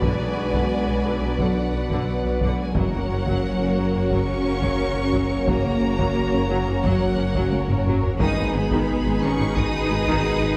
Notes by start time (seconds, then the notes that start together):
Already playing: B1 B2 F#3 B3 D4 F#4 B4 D5
0.02 B1 D3 G#3 G#5, taiko
0.19 B1 F#3
0.36 B1 B3
0.52 B1 D3, taiko
0.87 B1 B3
1.04 B1 D3
1.21 B1 F#3
1.39 B1 D3 F#3 F#5, taiko
1.73 B1 B3
1.90 B1 D3, taiko
2.24 B1 B3
2.41 B1 D3 F#3 F#5, taiko
2.59 G#3 G#5
2.74 F#1 C#3 F#3 A#3 C#4 F#4 A#4 C#5 F#5, taiko
2.92 F#1 A#3
3.09 F#1 C#4
3.26 F#1 F#3, taiko
3.60 F#1 C#4
3.77 F#1 F#3
3.94 F#1 A#3
4.11 F#1 F#3 C#4 C#6, taiko
4.46 F#1 C#4
4.62 F#1 F#3, taiko
4.96 F#1 C#4
5.13 F#1 F#3, taiko
5.47 F#1 F#3 A#3 A#5, taiko
5.64 F#1 A#3
5.81 F#1 C#4
5.99 F#1 F#3, taiko
6.33 F#1 C#4
6.50 F#1 F#3
6.67 F#1 A#3
6.84 F#1 F#3 F#5, taiko
7.17 F#1 C#4
7.35 F#1 F#3, taiko
7.52 taiko high
7.69 F#1 C#4, taiko low-mid
7.85 F#1 F#3, taiko low-mid
8.03 taiko low
8.19 G#1 B2 D#3 G#3 D#4 G#4 B4 D#6, taiko
8.37 G#1 D#3
8.54 G#1 G#3 B3 B5
8.71 G#1 D#3, taiko
9.05 G#1 G#3
9.22 G#1 D#3 C#4 C#6
9.39 G#1 D#3
9.56 G#1 D#3 D#4 D#6, taiko
9.90 G#1 G#3
10.07 G#1 D#3, taiko
10.41 G#1 G#3